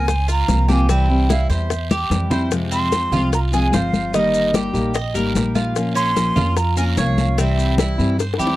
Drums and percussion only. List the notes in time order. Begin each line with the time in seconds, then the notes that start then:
0.08 high bongo, high conga, long guiro, maracas
0.29 high bongo, high conga, maracas
0.48 high bongo, low bongo, high conga, short guiro, maracas
0.69 high bongo, high conga, short guiro, maracas
0.89 high bongo, high conga, long guiro, maracas
1.10 high conga
1.30 high bongo, high conga, short guiro, maracas
1.50 high bongo, high conga, short guiro, maracas
1.70 high bongo, high conga, long guiro, maracas
1.91 high bongo, high conga, maracas
2.11 high bongo, low bongo, high conga, short guiro, maracas
2.31 high bongo, low conga, short guiro, maracas
2.51 high bongo, high conga, long guiro, maracas
2.72 high conga, maracas
2.92 high bongo, high conga, short guiro, maracas
3.12 high bongo, high conga, low conga, short guiro, maracas
3.32 high bongo, high conga, long guiro, maracas
3.53 high bongo, high conga, maracas
3.73 high bongo, low bongo, high conga, short guiro, maracas
3.94 high bongo, high conga, short guiro, maracas
4.14 high bongo, high conga, long guiro, maracas
4.34 high conga, maracas
4.54 high bongo, high conga, short guiro, maracas
4.75 high bongo, high conga, short guiro, maracas
4.94 high bongo, high conga, long guiro, maracas
5.15 high bongo, high conga, maracas
5.35 high bongo, low bongo, high conga, short guiro, maracas
5.55 high bongo, high conga, short guiro, maracas
5.76 high bongo, high conga, long guiro, maracas
5.96 high conga, maracas
6.16 high bongo, high conga, short guiro, maracas
6.37 high bongo, high conga, low conga, short guiro, maracas
6.57 high bongo, high conga, long guiro, maracas
6.77 high bongo, high conga, maracas
6.97 high bongo, low bongo, high conga, short guiro, maracas
7.18 high bongo, high conga, short guiro, maracas
7.38 high bongo, high conga, long guiro, maracas
7.58 high conga, maracas
7.78 high bongo, high conga, short guiro, maracas
7.99 high bongo, high conga, short guiro, maracas
8.19 high bongo, high conga, long guiro, maracas
8.34 high bongo
8.40 high conga, maracas
8.47 low bongo